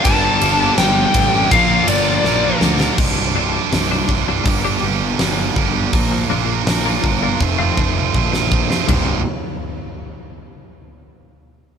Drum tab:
CC |----------------|x---------------|----------------|x---------------|
RD |x-x-x-x-x-x-----|----------------|----------------|----------------|
HH |----------------|----o---o---o---|o---o-----------|----------------|
SD |----o-------o-oo|----o-------o---|----o--------o-o|----------------|
FT |----------------|----------------|----------------|o---------------|
BD |o-----o-o-------|o-----o-o-----o-|o-----o-o-o-o-o-|o---------------|